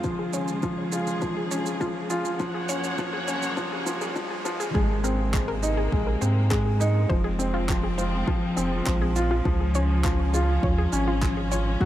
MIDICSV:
0, 0, Header, 1, 7, 480
1, 0, Start_track
1, 0, Tempo, 588235
1, 36, Time_signature, 4, 2, 24, 8
1, 9673, End_track
2, 0, Start_track
2, 0, Title_t, "Synth arpeggio sound"
2, 0, Program_c, 0, 84
2, 155, Note_on_c, 0, 68, 67
2, 188, Note_off_c, 0, 68, 0
2, 274, Note_on_c, 0, 73, 85
2, 330, Note_off_c, 0, 73, 0
2, 513, Note_on_c, 0, 65, 89
2, 570, Note_off_c, 0, 65, 0
2, 754, Note_on_c, 0, 68, 64
2, 788, Note_off_c, 0, 68, 0
2, 1115, Note_on_c, 0, 68, 71
2, 1149, Note_off_c, 0, 68, 0
2, 1235, Note_on_c, 0, 73, 87
2, 1291, Note_off_c, 0, 73, 0
2, 1476, Note_on_c, 0, 65, 98
2, 1531, Note_off_c, 0, 65, 0
2, 1716, Note_on_c, 0, 68, 74
2, 1749, Note_off_c, 0, 68, 0
2, 2076, Note_on_c, 0, 68, 72
2, 2109, Note_off_c, 0, 68, 0
2, 2194, Note_on_c, 0, 73, 104
2, 2251, Note_off_c, 0, 73, 0
2, 2555, Note_on_c, 0, 68, 78
2, 2589, Note_off_c, 0, 68, 0
2, 2676, Note_on_c, 0, 73, 91
2, 2732, Note_off_c, 0, 73, 0
2, 3037, Note_on_c, 0, 68, 77
2, 3070, Note_off_c, 0, 68, 0
2, 3275, Note_on_c, 0, 68, 72
2, 3309, Note_off_c, 0, 68, 0
2, 3513, Note_on_c, 0, 68, 77
2, 3548, Note_off_c, 0, 68, 0
2, 3753, Note_on_c, 0, 68, 78
2, 3788, Note_off_c, 0, 68, 0
2, 3874, Note_on_c, 0, 68, 101
2, 3930, Note_off_c, 0, 68, 0
2, 4112, Note_on_c, 0, 70, 79
2, 4147, Note_off_c, 0, 70, 0
2, 4352, Note_on_c, 0, 72, 104
2, 4387, Note_off_c, 0, 72, 0
2, 4472, Note_on_c, 0, 70, 99
2, 4557, Note_off_c, 0, 70, 0
2, 4711, Note_on_c, 0, 68, 95
2, 4747, Note_off_c, 0, 68, 0
2, 4952, Note_on_c, 0, 70, 75
2, 4987, Note_off_c, 0, 70, 0
2, 5071, Note_on_c, 0, 72, 96
2, 5129, Note_off_c, 0, 72, 0
2, 5309, Note_on_c, 0, 68, 105
2, 5368, Note_off_c, 0, 68, 0
2, 5549, Note_on_c, 0, 70, 75
2, 5586, Note_off_c, 0, 70, 0
2, 5789, Note_on_c, 0, 72, 110
2, 5826, Note_off_c, 0, 72, 0
2, 5909, Note_on_c, 0, 68, 100
2, 5996, Note_off_c, 0, 68, 0
2, 6151, Note_on_c, 0, 65, 97
2, 6187, Note_off_c, 0, 65, 0
2, 6394, Note_on_c, 0, 68, 77
2, 6428, Note_off_c, 0, 68, 0
2, 6511, Note_on_c, 0, 72, 101
2, 6569, Note_off_c, 0, 72, 0
2, 6753, Note_on_c, 0, 65, 104
2, 6810, Note_off_c, 0, 65, 0
2, 6995, Note_on_c, 0, 68, 69
2, 7029, Note_off_c, 0, 68, 0
2, 7236, Note_on_c, 0, 72, 105
2, 7269, Note_off_c, 0, 72, 0
2, 7356, Note_on_c, 0, 68, 102
2, 7439, Note_off_c, 0, 68, 0
2, 7596, Note_on_c, 0, 65, 105
2, 7629, Note_off_c, 0, 65, 0
2, 7838, Note_on_c, 0, 68, 78
2, 7870, Note_off_c, 0, 68, 0
2, 7957, Note_on_c, 0, 73, 103
2, 8012, Note_off_c, 0, 73, 0
2, 8197, Note_on_c, 0, 65, 103
2, 8252, Note_off_c, 0, 65, 0
2, 8438, Note_on_c, 0, 68, 72
2, 8470, Note_off_c, 0, 68, 0
2, 8676, Note_on_c, 0, 73, 102
2, 8709, Note_off_c, 0, 73, 0
2, 8799, Note_on_c, 0, 68, 101
2, 8881, Note_off_c, 0, 68, 0
2, 9038, Note_on_c, 0, 65, 101
2, 9070, Note_off_c, 0, 65, 0
2, 9278, Note_on_c, 0, 68, 73
2, 9310, Note_off_c, 0, 68, 0
2, 9397, Note_on_c, 0, 73, 102
2, 9452, Note_off_c, 0, 73, 0
2, 9638, Note_on_c, 0, 66, 107
2, 9673, Note_off_c, 0, 66, 0
2, 9673, End_track
3, 0, Start_track
3, 0, Title_t, "String section"
3, 0, Program_c, 1, 48
3, 0, Note_on_c, 1, 56, 72
3, 0, Note_on_c, 1, 65, 71
3, 34, Note_on_c, 1, 37, 87
3, 37, Note_on_c, 1, 49, 76
3, 38, Note_on_c, 1, 68, 96
3, 1919, Note_off_c, 1, 65, 0
3, 1921, Note_off_c, 1, 56, 0
3, 1936, Note_off_c, 1, 37, 0
3, 1937, Note_off_c, 1, 49, 0
3, 1938, Note_off_c, 1, 68, 0
3, 1953, Note_on_c, 1, 78, 81
3, 1954, Note_on_c, 1, 49, 80
3, 1954, Note_on_c, 1, 58, 79
3, 1954, Note_on_c, 1, 73, 96
3, 1956, Note_on_c, 1, 42, 89
3, 3855, Note_off_c, 1, 78, 0
3, 3856, Note_off_c, 1, 49, 0
3, 3856, Note_off_c, 1, 58, 0
3, 3856, Note_off_c, 1, 73, 0
3, 3857, Note_off_c, 1, 42, 0
3, 3873, Note_on_c, 1, 48, 86
3, 3875, Note_on_c, 1, 58, 99
3, 3876, Note_on_c, 1, 56, 83
3, 5775, Note_off_c, 1, 48, 0
3, 5776, Note_off_c, 1, 58, 0
3, 5790, Note_on_c, 1, 53, 89
3, 5793, Note_on_c, 1, 60, 101
3, 7695, Note_off_c, 1, 60, 0
3, 7718, Note_on_c, 1, 61, 95
3, 9600, Note_off_c, 1, 53, 0
3, 9604, Note_off_c, 1, 56, 0
3, 9641, Note_on_c, 1, 54, 94
3, 9644, Note_on_c, 1, 58, 83
3, 9673, Note_off_c, 1, 54, 0
3, 9673, Note_off_c, 1, 58, 0
3, 9673, Note_off_c, 1, 61, 0
3, 9673, End_track
4, 0, Start_track
4, 0, Title_t, "Felt piano"
4, 0, Program_c, 2, 0
4, 0, Control_c, 2, 64, 127
4, 31, Note_on_c, 2, 53, 89
4, 46, Control_c, 2, 64, 0
4, 216, Control_c, 2, 64, 127
4, 262, Note_off_c, 2, 53, 0
4, 271, Note_on_c, 2, 61, 59
4, 410, Note_off_c, 2, 61, 0
4, 514, Note_on_c, 2, 53, 89
4, 743, Note_off_c, 2, 53, 0
4, 753, Note_on_c, 2, 65, 88
4, 891, Note_off_c, 2, 65, 0
4, 993, Note_on_c, 2, 53, 93
4, 1222, Note_off_c, 2, 53, 0
4, 1236, Note_on_c, 2, 61, 69
4, 1373, Note_off_c, 2, 61, 0
4, 1473, Note_on_c, 2, 53, 94
4, 1702, Note_off_c, 2, 53, 0
4, 1714, Note_on_c, 2, 65, 102
4, 1852, Note_off_c, 2, 65, 0
4, 1956, Note_on_c, 2, 53, 99
4, 1965, Control_c, 2, 64, 0
4, 2105, Control_c, 2, 64, 127
4, 2184, Note_off_c, 2, 53, 0
4, 2199, Note_on_c, 2, 61, 67
4, 2334, Note_off_c, 2, 61, 0
4, 2436, Note_on_c, 2, 53, 100
4, 2664, Note_off_c, 2, 53, 0
4, 2676, Note_on_c, 2, 61, 75
4, 2813, Note_off_c, 2, 61, 0
4, 2913, Note_on_c, 2, 53, 105
4, 3135, Note_off_c, 2, 53, 0
4, 3152, Note_on_c, 2, 53, 107
4, 3375, Note_off_c, 2, 53, 0
4, 3392, Note_on_c, 2, 53, 96
4, 3615, Note_off_c, 2, 53, 0
4, 3633, Note_on_c, 2, 53, 109
4, 3855, Note_off_c, 2, 53, 0
4, 3869, Note_on_c, 2, 56, 95
4, 3888, Control_c, 2, 64, 0
4, 4028, Control_c, 2, 64, 127
4, 4101, Note_off_c, 2, 56, 0
4, 4110, Note_on_c, 2, 60, 85
4, 4250, Note_off_c, 2, 60, 0
4, 4351, Note_on_c, 2, 56, 73
4, 4490, Note_off_c, 2, 56, 0
4, 4592, Note_on_c, 2, 63, 94
4, 4822, Note_off_c, 2, 63, 0
4, 4833, Note_on_c, 2, 56, 96
4, 5062, Note_off_c, 2, 56, 0
4, 5073, Note_on_c, 2, 60, 73
4, 5211, Note_off_c, 2, 60, 0
4, 5313, Note_on_c, 2, 56, 102
4, 5542, Note_off_c, 2, 56, 0
4, 5554, Note_on_c, 2, 63, 107
4, 5692, Note_off_c, 2, 63, 0
4, 5794, Note_on_c, 2, 53, 74
4, 5806, Control_c, 2, 64, 0
4, 5929, Control_c, 2, 64, 127
4, 6023, Note_off_c, 2, 53, 0
4, 6029, Note_on_c, 2, 60, 90
4, 6261, Note_off_c, 2, 60, 0
4, 6271, Note_on_c, 2, 53, 75
4, 6501, Note_off_c, 2, 53, 0
4, 6512, Note_on_c, 2, 65, 75
4, 6742, Note_off_c, 2, 65, 0
4, 6752, Note_on_c, 2, 53, 100
4, 6982, Note_off_c, 2, 53, 0
4, 6990, Note_on_c, 2, 60, 94
4, 7129, Note_off_c, 2, 60, 0
4, 7232, Note_on_c, 2, 53, 76
4, 7371, Note_off_c, 2, 53, 0
4, 7474, Note_on_c, 2, 65, 106
4, 7703, Note_off_c, 2, 65, 0
4, 7713, Note_on_c, 2, 53, 95
4, 7727, Control_c, 2, 64, 0
4, 7872, Control_c, 2, 64, 127
4, 7943, Note_off_c, 2, 53, 0
4, 7957, Note_on_c, 2, 61, 64
4, 8093, Note_off_c, 2, 61, 0
4, 8193, Note_on_c, 2, 53, 95
4, 8422, Note_off_c, 2, 53, 0
4, 8434, Note_on_c, 2, 65, 99
4, 8572, Note_off_c, 2, 65, 0
4, 8671, Note_on_c, 2, 53, 75
4, 8902, Note_off_c, 2, 53, 0
4, 8915, Note_on_c, 2, 61, 94
4, 9143, Note_off_c, 2, 61, 0
4, 9157, Note_on_c, 2, 53, 74
4, 9384, Note_off_c, 2, 53, 0
4, 9394, Note_on_c, 2, 65, 75
4, 9623, Note_off_c, 2, 65, 0
4, 9633, Note_on_c, 2, 54, 91
4, 9647, Control_c, 2, 64, 0
4, 9673, Note_off_c, 2, 54, 0
4, 9673, End_track
5, 0, Start_track
5, 0, Title_t, "Sub bass"
5, 0, Program_c, 3, 38
5, 3875, Note_on_c, 3, 32, 98
5, 4801, Note_off_c, 3, 32, 0
5, 4835, Note_on_c, 3, 34, 96
5, 5032, Note_off_c, 3, 34, 0
5, 5073, Note_on_c, 3, 44, 96
5, 5759, Note_off_c, 3, 44, 0
5, 5793, Note_on_c, 3, 29, 98
5, 6720, Note_off_c, 3, 29, 0
5, 6991, Note_on_c, 3, 29, 89
5, 7190, Note_off_c, 3, 29, 0
5, 7234, Note_on_c, 3, 34, 102
5, 7680, Note_off_c, 3, 34, 0
5, 7714, Note_on_c, 3, 37, 100
5, 8640, Note_off_c, 3, 37, 0
5, 8674, Note_on_c, 3, 39, 103
5, 8872, Note_off_c, 3, 39, 0
5, 8914, Note_on_c, 3, 32, 97
5, 9600, Note_off_c, 3, 32, 0
5, 9637, Note_on_c, 3, 30, 102
5, 9673, Note_off_c, 3, 30, 0
5, 9673, End_track
6, 0, Start_track
6, 0, Title_t, "Riser"
6, 0, Program_c, 4, 103
6, 0, Note_on_c, 4, 60, 65
6, 3876, Note_off_c, 4, 60, 0
6, 9673, End_track
7, 0, Start_track
7, 0, Title_t, "Drums"
7, 31, Note_on_c, 9, 82, 33
7, 34, Note_on_c, 9, 36, 98
7, 113, Note_off_c, 9, 82, 0
7, 116, Note_off_c, 9, 36, 0
7, 272, Note_on_c, 9, 82, 72
7, 354, Note_off_c, 9, 82, 0
7, 392, Note_on_c, 9, 82, 40
7, 474, Note_off_c, 9, 82, 0
7, 512, Note_on_c, 9, 82, 31
7, 515, Note_on_c, 9, 36, 105
7, 593, Note_off_c, 9, 82, 0
7, 597, Note_off_c, 9, 36, 0
7, 753, Note_on_c, 9, 82, 73
7, 834, Note_off_c, 9, 82, 0
7, 873, Note_on_c, 9, 82, 36
7, 955, Note_off_c, 9, 82, 0
7, 994, Note_on_c, 9, 82, 31
7, 996, Note_on_c, 9, 36, 106
7, 1076, Note_off_c, 9, 82, 0
7, 1078, Note_off_c, 9, 36, 0
7, 1236, Note_on_c, 9, 82, 76
7, 1317, Note_off_c, 9, 82, 0
7, 1355, Note_on_c, 9, 82, 42
7, 1437, Note_off_c, 9, 82, 0
7, 1477, Note_on_c, 9, 36, 102
7, 1477, Note_on_c, 9, 82, 31
7, 1558, Note_off_c, 9, 36, 0
7, 1558, Note_off_c, 9, 82, 0
7, 1714, Note_on_c, 9, 82, 70
7, 1796, Note_off_c, 9, 82, 0
7, 1836, Note_on_c, 9, 82, 42
7, 1918, Note_off_c, 9, 82, 0
7, 1956, Note_on_c, 9, 82, 32
7, 1957, Note_on_c, 9, 36, 110
7, 2038, Note_off_c, 9, 82, 0
7, 2039, Note_off_c, 9, 36, 0
7, 2194, Note_on_c, 9, 82, 78
7, 2276, Note_off_c, 9, 82, 0
7, 2316, Note_on_c, 9, 82, 44
7, 2398, Note_off_c, 9, 82, 0
7, 2436, Note_on_c, 9, 36, 117
7, 2436, Note_on_c, 9, 82, 35
7, 2517, Note_off_c, 9, 82, 0
7, 2518, Note_off_c, 9, 36, 0
7, 2676, Note_on_c, 9, 82, 70
7, 2758, Note_off_c, 9, 82, 0
7, 2795, Note_on_c, 9, 82, 42
7, 2877, Note_off_c, 9, 82, 0
7, 2916, Note_on_c, 9, 36, 110
7, 2917, Note_on_c, 9, 82, 31
7, 2997, Note_off_c, 9, 36, 0
7, 2999, Note_off_c, 9, 82, 0
7, 3155, Note_on_c, 9, 82, 75
7, 3237, Note_off_c, 9, 82, 0
7, 3275, Note_on_c, 9, 82, 42
7, 3357, Note_off_c, 9, 82, 0
7, 3395, Note_on_c, 9, 82, 31
7, 3396, Note_on_c, 9, 36, 105
7, 3477, Note_off_c, 9, 82, 0
7, 3478, Note_off_c, 9, 36, 0
7, 3635, Note_on_c, 9, 82, 73
7, 3717, Note_off_c, 9, 82, 0
7, 3758, Note_on_c, 9, 82, 44
7, 3839, Note_off_c, 9, 82, 0
7, 3876, Note_on_c, 9, 36, 101
7, 3957, Note_off_c, 9, 36, 0
7, 4117, Note_on_c, 9, 82, 62
7, 4199, Note_off_c, 9, 82, 0
7, 4355, Note_on_c, 9, 36, 106
7, 4357, Note_on_c, 9, 39, 102
7, 4437, Note_off_c, 9, 36, 0
7, 4438, Note_off_c, 9, 39, 0
7, 4595, Note_on_c, 9, 82, 61
7, 4677, Note_off_c, 9, 82, 0
7, 4834, Note_on_c, 9, 36, 98
7, 4916, Note_off_c, 9, 36, 0
7, 5076, Note_on_c, 9, 82, 61
7, 5157, Note_off_c, 9, 82, 0
7, 5315, Note_on_c, 9, 36, 97
7, 5315, Note_on_c, 9, 39, 89
7, 5396, Note_off_c, 9, 36, 0
7, 5396, Note_off_c, 9, 39, 0
7, 5556, Note_on_c, 9, 82, 59
7, 5638, Note_off_c, 9, 82, 0
7, 5794, Note_on_c, 9, 36, 103
7, 5876, Note_off_c, 9, 36, 0
7, 6036, Note_on_c, 9, 82, 65
7, 6118, Note_off_c, 9, 82, 0
7, 6274, Note_on_c, 9, 36, 105
7, 6276, Note_on_c, 9, 39, 101
7, 6356, Note_off_c, 9, 36, 0
7, 6358, Note_off_c, 9, 39, 0
7, 6517, Note_on_c, 9, 82, 62
7, 6598, Note_off_c, 9, 82, 0
7, 6753, Note_on_c, 9, 36, 106
7, 6835, Note_off_c, 9, 36, 0
7, 6996, Note_on_c, 9, 82, 64
7, 7078, Note_off_c, 9, 82, 0
7, 7234, Note_on_c, 9, 39, 102
7, 7235, Note_on_c, 9, 36, 105
7, 7316, Note_off_c, 9, 36, 0
7, 7316, Note_off_c, 9, 39, 0
7, 7475, Note_on_c, 9, 82, 61
7, 7557, Note_off_c, 9, 82, 0
7, 7714, Note_on_c, 9, 36, 102
7, 7796, Note_off_c, 9, 36, 0
7, 7955, Note_on_c, 9, 82, 68
7, 8036, Note_off_c, 9, 82, 0
7, 8196, Note_on_c, 9, 36, 112
7, 8196, Note_on_c, 9, 39, 98
7, 8278, Note_off_c, 9, 36, 0
7, 8278, Note_off_c, 9, 39, 0
7, 8439, Note_on_c, 9, 82, 65
7, 8521, Note_off_c, 9, 82, 0
7, 8676, Note_on_c, 9, 36, 113
7, 8757, Note_off_c, 9, 36, 0
7, 8918, Note_on_c, 9, 82, 66
7, 9000, Note_off_c, 9, 82, 0
7, 9156, Note_on_c, 9, 36, 108
7, 9160, Note_on_c, 9, 39, 91
7, 9238, Note_off_c, 9, 36, 0
7, 9241, Note_off_c, 9, 39, 0
7, 9400, Note_on_c, 9, 82, 64
7, 9481, Note_off_c, 9, 82, 0
7, 9636, Note_on_c, 9, 36, 109
7, 9673, Note_off_c, 9, 36, 0
7, 9673, End_track
0, 0, End_of_file